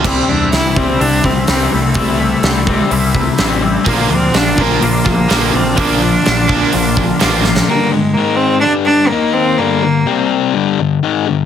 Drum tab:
CC |x---------------|----------------|----------------|----------------|
HH |----o---o---o---|o---o---o---o---|o---o---o---o---|o---o---o---o---|
SD |----o-------o---|----o-------o---|----o-------o---|----o-------o-oo|
BD |o-----o---o-----|o-----o---o-----|o-----o---o-----|o-----o---o-----|

CC |----------------|----------------|
HH |----------------|----------------|
SD |----------------|----------------|
BD |----------------|----------------|